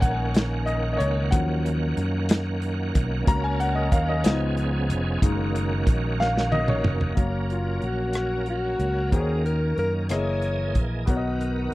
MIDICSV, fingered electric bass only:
0, 0, Header, 1, 2, 480
1, 0, Start_track
1, 0, Key_signature, 6, "major"
1, 0, Tempo, 650054
1, 979, Time_signature, 6, 3, 24, 8
1, 8669, End_track
2, 0, Start_track
2, 0, Title_t, "Fingered electric bass"
2, 0, Program_c, 0, 33
2, 18, Note_on_c, 0, 34, 75
2, 709, Note_off_c, 0, 34, 0
2, 739, Note_on_c, 0, 37, 80
2, 960, Note_off_c, 0, 37, 0
2, 979, Note_on_c, 0, 39, 99
2, 1429, Note_off_c, 0, 39, 0
2, 1456, Note_on_c, 0, 42, 80
2, 2147, Note_off_c, 0, 42, 0
2, 2179, Note_on_c, 0, 35, 81
2, 2399, Note_off_c, 0, 35, 0
2, 2418, Note_on_c, 0, 37, 96
2, 2867, Note_off_c, 0, 37, 0
2, 2897, Note_on_c, 0, 39, 85
2, 3117, Note_off_c, 0, 39, 0
2, 3138, Note_on_c, 0, 37, 100
2, 3616, Note_on_c, 0, 29, 76
2, 3627, Note_off_c, 0, 37, 0
2, 3836, Note_off_c, 0, 29, 0
2, 3855, Note_on_c, 0, 30, 95
2, 4305, Note_off_c, 0, 30, 0
2, 4335, Note_on_c, 0, 34, 83
2, 5026, Note_off_c, 0, 34, 0
2, 5051, Note_on_c, 0, 29, 90
2, 5274, Note_off_c, 0, 29, 0
2, 5295, Note_on_c, 0, 30, 66
2, 5746, Note_off_c, 0, 30, 0
2, 5774, Note_on_c, 0, 34, 51
2, 6466, Note_off_c, 0, 34, 0
2, 6494, Note_on_c, 0, 37, 59
2, 6716, Note_off_c, 0, 37, 0
2, 6740, Note_on_c, 0, 39, 71
2, 7189, Note_off_c, 0, 39, 0
2, 7218, Note_on_c, 0, 42, 65
2, 7438, Note_off_c, 0, 42, 0
2, 7457, Note_on_c, 0, 30, 60
2, 7944, Note_off_c, 0, 30, 0
2, 7944, Note_on_c, 0, 34, 58
2, 8162, Note_off_c, 0, 34, 0
2, 8180, Note_on_c, 0, 35, 65
2, 8630, Note_off_c, 0, 35, 0
2, 8669, End_track
0, 0, End_of_file